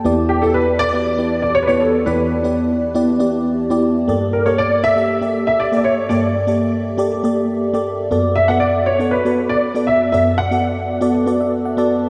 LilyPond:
<<
  \new Staff \with { instrumentName = "Grand piano" } { \time 4/4 \key e \dorian \tempo 4 = 119 r8 g'16 a'16 b'8 d''4~ d''16 d''16 cis''32 b'32 cis''16 a'8 | b'2 r2 | r8 bes'16 cis''16 d''8 e''4~ e''16 e''16 d''16. d''32 cis''8 | d''2 r2 |
r8 e''16 fis''16 d''8 cis''8 b'8. d''8. e''8 | e''8 fis''4. r2 | }
  \new Staff \with { instrumentName = "FM electric piano" } { \time 4/4 \key e \dorian << { a''8 r2. r8 | r1 | r1 | r1 |
r1 | r2 r8 e''8 fis''16 a''8. | } \\ { <b e' g' d''>8 r16 <b e' fis' g' d''>8. r16 <b e' g' d''>16 r16 <b e' g' d''>8. r16 <b e' g' d''>8 r16 | <b e' g' d''>8 r16 <b e' g' d''>8. r16 <b e' g' d''>16 r16 <b e' g' d''>8. r16 <b e' g' d''>8 r16 | <bes g' a' d''>8 r16 <bes g' a' d''>8. r16 <bes g' a' e''>16 r16 <bes g' a' d''>8. r16 <bes g' a' d''>8 r16 | <bes g' a' d''>8 r16 <bes g' a' d''>8. r16 <bes g' a' d''>16 r16 <bes g' a' d''>8. r16 <bes g' a' d''>8 r16 |
<b fis' a' d''>8 r16 <b fis' a' d''>8. r16 <b fis' a' d''>16 r16 <b fis' a' d''>8. r16 <b fis' a' d''>8 r16 | <b fis' a' d''>8 r16 <b fis' a' d''>8. r16 <b fis' a' d''>16 r16 <b fis' a' d''>8. r16 <b fis' a' d''>8 r16 | } >> }
  \new Staff \with { instrumentName = "FM electric piano" } { \clef bass \time 4/4 \key e \dorian <e, e>1 | <e, e>1 | g,1 | g,1 |
fis,1 | fis,1 | }
>>